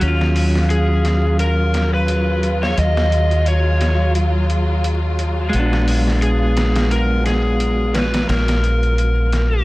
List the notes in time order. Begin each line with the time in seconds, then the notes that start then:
Already playing: F#3 G#4
0.01 D#2 F#3 C#4 F4, closed hi-hat
0.08 F4
0.21 snare
0.36 open hi-hat
0.55 snare
0.70 G#4, closed hi-hat
1.05 snare, closed hi-hat
1.39 A#4, closed hi-hat
1.74 snare, closed hi-hat
1.94 B4
2.08 closed hi-hat
2.43 closed hi-hat
2.63 C#5, snare
2.77 D#2 D#5, closed hi-hat
2.97 snare
3.12 closed hi-hat
3.31 closed hi-hat
3.46 C#5, closed hi-hat
3.81 snare, closed hi-hat
4.15 closed hi-hat
4.50 closed hi-hat
4.84 closed hi-hat
5.19 closed hi-hat
5.49 G#3, closed hi-hat
5.54 A#1 B3
5.59 D4
5.73 snare
5.88 open hi-hat
6.07 snare
6.22 G#4, closed hi-hat
6.57 snare, closed hi-hat
6.75 snare, closed hi-hat
6.91 A#4, closed hi-hat
7.26 G#4, snare, closed hi-hat
7.60 closed hi-hat
7.94 B4, snare, closed hi-hat
8.14 snare, closed hi-hat
8.29 A#1 A#4, snare, closed hi-hat
8.48 snare, closed hi-hat
8.64 closed hi-hat
8.83 closed hi-hat
8.98 closed hi-hat
9.33 snare, closed hi-hat